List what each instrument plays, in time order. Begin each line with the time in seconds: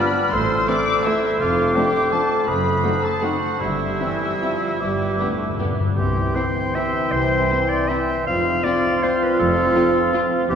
Already playing: french horn section B3 F4, bassoon B3, cor anglais B4, clarinet D5, violin section B5, flute F6
0.32 double bass section A1, cello section A2, bassoon A3, cor anglais C5, clarinet C5, violin section C6, flute E6
0.68 viola section E3 A3, french horn section C4 E4, violin section C4 E4 D6, cor anglais D5
1.04 viola section E3 A3, violin section C4 E4 E5, french horn section C4 E4, cor anglais E4
1.41 double bass section F1, cello section F2, cor anglais F4, violin section F5, flute D6
1.75 viola section F3 A3, french horn section C4 D4, violin section C4 D4 G5, cor anglais G4
2.11 viola section F3 A3, french horn section C4 D4, violin section C4 D4 A5, cor anglais A4
2.48 double bass section F#1, cello section F#2, bassoon A3, cor anglais B4, clarinet C5, violin section B5, flute D#6
2.83 viola section D#3 A3, french horn section C4 D#4, violin section C4 F#4
3.03 cor anglais A4, violin section A5
3.22 viola section D#3 A3, french horn section C4 D#4, violin section C4 F#4 F#5, cor anglais F#4
3.60 double bass section G1, timpani G2, cello section G2, bassoon G3, cor anglais E4, violin section E5, flute E6
3.99 viola section E3, french horn section C4 E4, violin section C4 E4
4.40 viola section F3, french horn section C4 E4, violin section C4 E4
4.80 double bass section G1, cello section G2, timpani G2, viola section G3, clarinet B4, flute D6
4.88 timpani G2
4.95 timpani G2
5.02 timpani G2
5.10 timpani G2
5.18 timpani G2, viola section A3, french horn section B3 D4, violin section B3 G4
5.26 timpani G2
5.34 timpani G2
5.42 timpani G2
5.50 timpani G2
5.57 timpani G2, viola section B3, violin section B3 G4, french horn section B3 D4
5.65 timpani G2
5.73 timpani G2
5.80 timpani G2
5.88 timpani G2
5.97 double bass section C2, timpani C3, cello section C3, bassoon E3, french horn section C4 E4, clarinet G4, cor anglais G5, flute C6
6.35 viola section C4, violin section E4 G5, clarinet C5
6.75 viola section C4, violin section E4 G5, clarinet E5
7.12 double bass section C2, cello section C3, clarinet C5
7.49 viola section C4, violin section E4 G5
7.69 clarinet D5
7.88 viola section C4, violin section E4 G5, clarinet E5
8.27 double bass section F1, cello section F2, bassoon F3, french horn section C4 F4, cor anglais F5, clarinet F5, flute C6
8.63 viola section C4, violin section F4 F5, clarinet D5
9.03 viola section C4, violin section F4 F5, clarinet C5
9.23 clarinet B4
9.40 double bass section F1, cello section F2, clarinet A4
9.75 viola section C4, violin section F4 F5
10.13 viola section C4, violin section F4 F5
10.49 double bass section E1, cello section E2, bassoon E3, french horn section C4 E4, clarinet G4, cor anglais G5, flute C6